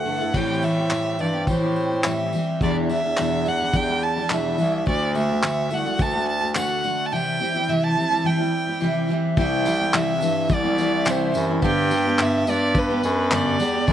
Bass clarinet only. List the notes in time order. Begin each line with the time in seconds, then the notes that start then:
0.06 G2
0.34 A2
1.19 G2
1.48 A2
2.61 E2
3.04 E2
3.18 E2
3.74 E2
4.31 E2
4.59 C2
4.87 D2
5.72 C2
5.99 D2
9.37 C2
10.22 G2
10.50 C2
11.35 F#2
11.62 G2
12.48 G2
13.04 F#2
13.60 E2
13.88 F#2